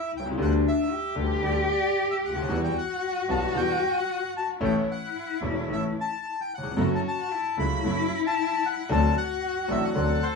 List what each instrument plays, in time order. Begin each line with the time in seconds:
Already playing: cello E4, bandoneon E5
0.12 double bass C2
0.17 upright piano B1, bandoneon G5
0.26 upright piano C2
0.31 upright piano C#2
0.37 upright piano D2 D3 G3 B3 G4, double bass D2, cello D4
0.42 bandoneon F#5
0.68 bandoneon E5
0.90 cello G4
1.15 upright piano D2 D3 G3 B3 G4, double bass D2
1.42 upright piano D2 D3 G3 B3 G4, double bass D2, bandoneon D5
1.71 bandoneon D5
2.11 bandoneon E5
2.23 double bass D2, bandoneon F#5
2.29 upright piano C#2
2.35 upright piano D2
2.42 upright piano D#2
2.48 double bass E2, upright piano E2 E3 G3 B3 F#4, cello F#4
2.64 bandoneon G5
2.78 bandoneon F#5
3.28 upright piano B1 B2 E3 G3 B3 F#4, double bass B1, bandoneon A5
3.54 upright piano E2 E3 G3 B3 F#4, double bass E2, bandoneon G5
3.97 bandoneon F#5
4.37 bandoneon A5
4.61 upright piano A1 A2 E3 A3 C#4 A4, double bass A1, cello E4
4.65 bandoneon G5
4.91 bandoneon F#5
5.42 upright piano E1 E2 E3 A3 C#4 A4, double bass E1
5.68 upright piano A1 A2 E3 A3 C#4 A4, double bass A1
5.73 bandoneon E5
6.01 bandoneon A5
6.41 bandoneon G5
6.55 upright piano D#2, bandoneon F#5
6.63 upright piano E2
6.71 upright piano F2
6.77 double bass F#1, upright piano F#2 F#3 C#4 E4 A4, bandoneon A3 E4 F#4, cello F#4
6.95 bandoneon A5
7.08 bandoneon A5
7.31 cello E4
7.57 double bass C#2, upright piano C#2 C#3 F#3 C#4 E4 A4, bandoneon A3 E4 F#4 B5
7.84 double bass F#1, upright piano F#2 F#3 C#4 E4 A4, bandoneon A3 E4 F#4
8.27 bandoneon A5
8.66 bandoneon F#5
8.89 upright piano D2 D3 F#3 C4 D4 A4, double bass D2, bandoneon C4 D4 F#4 A5, cello F#4
9.17 bandoneon F#5
9.68 double bass A1, upright piano A1 A2 F#3 C4 D4 A4, bandoneon C4 D4 F#4 E5
9.84 bandoneon F#5
9.95 upright piano D2 D3 F#3 C4 D4 A4, double bass D2, bandoneon C4 D4 F#4, cello A4
10.23 bandoneon C5